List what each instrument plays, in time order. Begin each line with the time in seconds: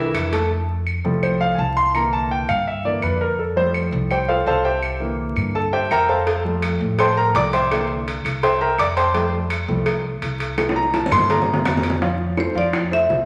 Already playing: upright bass C2, grand piano E3 E4 E5, marimba A#4
0.14 upright bass F2, cowbell, claves
0.33 grand piano A3 A4 A5, cowbell
0.87 claves
1.04 upright bass C2, grand piano F3 G3 A3
1.23 grand piano C5, claves
1.41 grand piano F5
1.55 upright bass C2, grand piano G#5
1.59 grand piano A5
1.77 grand piano C6
1.94 grand piano D3 E3 A#3 A#5, claves
2.13 grand piano A5
2.31 grand piano G5
2.48 upright bass G2, grand piano F5, claves
2.67 grand piano E5
2.85 grand piano D3 E3 A#3 D5
3.02 upright bass F2, grand piano B4, claves
3.21 grand piano A#4
3.39 grand piano A4
3.56 grand piano F3 G3 A3 C5
3.74 claves
3.92 upright bass C2
4.11 grand piano G4 C5 G5, claves
4.28 grand piano F4 A4 C5 F5
4.46 upright bass C2, grand piano A4 C5 F5 A5
4.65 grand piano G4 C5 E5 G5
4.83 claves
5.00 grand piano D3 E3 A#3
5.36 upright bass G2, claves
5.55 grand piano A4 A5
5.73 grand piano G4 C5 E5 G5
5.90 upright bass F2, grand piano A#4 E5 G5 A#5, claves
6.09 grand piano A4 C5 F5 A5
6.27 cowbell
6.44 grand piano F3 G3 A3
6.62 cowbell, claves
6.80 upright bass A2
6.99 grand piano C5 G5 A5 C6, cowbell, claves
7.17 grand piano A#4 A#5
7.34 upright bass C2, grand piano F3 G3 A3 D5 D6, cowbell
7.53 grand piano C5 E5 G5 C6, cowbell
7.71 grand piano D3 E3 A#3, cowbell, claves
8.08 cowbell
8.24 upright bass C2, cowbell, claves
8.43 grand piano C5 E5 G5 C6, cowbell
8.61 grand piano A#4 E5 G5 A#5
8.78 upright bass F2, grand piano D5 D6, cowbell, claves
8.97 grand piano C5 G5 A5 C6, cowbell
9.14 grand piano F3 G3 A3, cowbell
9.50 cowbell, claves
9.68 upright bass C2, grand piano F3 G3 A3
9.86 cowbell, claves
10.22 upright bass C2, cowbell
10.40 cowbell
10.58 cowbell, high bongo, claves
10.69 high bongo
10.76 grand piano A#5
10.94 grand piano A5, cowbell, high bongo
11.06 low bongo
11.11 upright bass G2, grand piano D3 E3 A#3 C6, cowbell, claves
11.18 low bongo
11.30 grand piano A#5, cowbell, low bongo
11.42 low bongo
11.53 low bongo
11.65 upright bass F2, cowbell, low bongo, claves
11.77 low bongo
11.83 cowbell
11.90 low bongo
12.02 grand piano F3 F4 F5, high bongo
12.37 grand piano A3 A4 C5, marimba C5, high bongo, claves
12.55 upright bass F2, grand piano F3 F4 F5, marimba D5, high bongo
12.73 high bongo, claves
12.91 grand piano A3 A4 C5, marimba E5, high bongo
13.09 upright bass C2, high bongo, low bongo